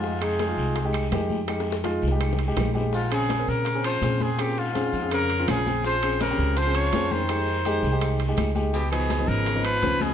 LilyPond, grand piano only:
\new Staff \with { instrumentName = "Grand piano" } { \time 4/4 \key f \minor \tempo 4 = 165 <ees' g'>16 r16 <aes ees' aes'>8 r16 <aes ees' f'>8. r16 <aes ees' g'>8 r16 <aes ees' g'>8. r16 | <aes ees' g'>8. r16 <aes ees' f'>8 r16 <aes ees' g'>8. r16 <aes ees' g'>8 r16 <aes ees' g'>8 | r8 <c' des' aes'>8 r16 <c' des' bes'>8. r16 <c' des' aes'>8 r16 <c' des' aes'>8. r16 | <c' des' aes'>8. r16 <c' des' aes'>8 r16 <c' des' aes'>8. r16 <c' des' f'>8 r16 <c' des' aes'>8~ |
<c' des' aes'>16 r16 <c' des' aes'>8 r16 <c' des' g'>8. r16 <c' des' aes'>8 r16 <c' des' aes'>8. r16 | <aes ees' g'>8. r16 <aes ees' g'>8 r16 <aes ees' g'>8. r16 <aes ees' g'>8 r16 <aes ees' g'>8 | r8 <f ces' ees'>8 r16 <f ces' ees'>8. r16 <f ces' ees'>8 r16 <f ces' des'>8. r16 | }